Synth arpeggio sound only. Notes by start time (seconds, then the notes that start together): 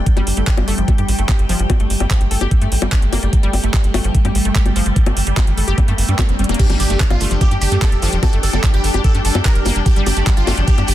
0.17 G3
0.37 A3
0.47 G3
0.68 A3
0.78 F3
0.98 G4
1.19 A3
1.29 G4
1.49 F3
1.60 F3
1.80 A3
2.00 G3
2.10 F3
2.31 A4
2.41 G4
2.62 A3
2.82 G3
2.92 D4
3.12 A#3
3.23 G3
3.43 G3
3.64 A3
3.74 G3
3.94 A3
4.04 F3
4.25 G4
4.45 A3
4.55 G4
4.76 F3
4.86 F3
5.06 A3
5.27 G3
5.37 F3
5.57 A4
5.68 G4
5.88 A3
6.08 G3
6.19 A3
6.39 G3
6.49 A#3
6.70 G3
6.90 A3
7.00 G3
7.21 A3
7.31 F3
7.51 G4
7.72 A3
7.82 G4
8.02 F3
8.13 F3
8.33 A3
8.53 G3
8.64 F3
8.84 A4
8.94 G4
9.15 A3
9.35 G3
9.45 D4
9.66 A#3
9.76 G3
9.96 G3
10.17 A3
10.27 G3
10.47 A3
10.57 F3
10.78 G4